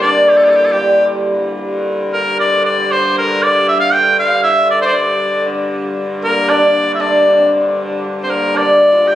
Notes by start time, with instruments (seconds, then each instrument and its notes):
Already playing: hurdy-gurdy G2 D3, hammered dulcimer A#3 C4 E4
0.01 hammered dulcimer D4, shawm D5
0.29 shawm G4
0.37 shawm A4
0.44 shawm G4
0.50 shawm A4
0.56 shawm G4
0.66 shawm A4
0.72 hammered dulcimer G3, shawm G4
1.34 hurdy-gurdy G2 D3
2.13 shawm A#4
2.40 shawm D5
2.66 shawm D5
2.92 shawm C5
3.18 shawm A#4
3.43 shawm D5
3.68 shawm E5
3.80 shawm F5
3.94 shawm G5
4.19 shawm F5
4.43 shawm E5
4.71 shawm D5
4.81 shawm C5
4.85 shawm C5 D5
4.93 shawm D5
5.45 hurdy-gurdy G2 D3
6.22 hammered dulcimer A#3, shawm A#4
6.49 hammered dulcimer D4, shawm D5
6.95 shawm E5
7.00 hammered dulcimer D4, shawm D5
7.38 hammered dulcimer C4
8.23 hammered dulcimer C4, shawm C5
8.30 hammered dulcimer A#3, shawm A#4
8.54 hammered dulcimer D4, shawm D5
8.92 hammered dulcimer F4
9.06 hammered dulcimer G4, shawm G5